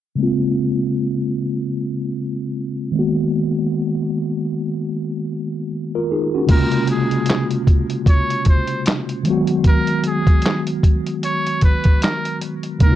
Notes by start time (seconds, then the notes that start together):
0.15 C#3 G#3 A#3
0.21 C4 F4
2.92 D#3 G#3 A#3
2.97 B3 F#4
5.95 F4 A#4
6.11 D#4 G#4
6.35 C#4 F#4
6.47 C#3 G#3 A#3, kick, closed hi-hat, crash
6.52 C3 F4 A#4
6.72 closed hi-hat
6.87 G#4, closed hi-hat
7.11 closed hi-hat
7.26 closed hi-hat
7.30 snare, clap
7.51 closed hi-hat
7.67 kick, closed hi-hat
7.90 closed hi-hat
8.06 C#5, kick, closed hi-hat
8.30 closed hi-hat
8.45 kick, closed hi-hat
8.49 C5
8.67 closed hi-hat
8.86 snare, clap, closed hi-hat
9.09 closed hi-hat
9.23 D#3 F#3 G#3, closed hi-hat
9.29 B3 F#4
9.47 closed hi-hat
9.64 A#4, kick, closed hi-hat
9.87 closed hi-hat
10.04 closed hi-hat
10.08 G#4
10.27 kick, closed hi-hat
10.42 closed hi-hat
10.46 snare, clap
10.67 closed hi-hat
10.83 kick, closed hi-hat
11.06 closed hi-hat
11.23 C#5, closed hi-hat
11.47 closed hi-hat
11.61 B4, kick, closed hi-hat
11.84 kick, closed hi-hat
12.02 A#4, snare, clap, closed hi-hat
12.25 closed hi-hat
12.41 closed hi-hat
12.63 closed hi-hat
12.79 C#3 G#3 A#3 A#4, kick, closed hi-hat
12.84 C3 D#4
12.92 F4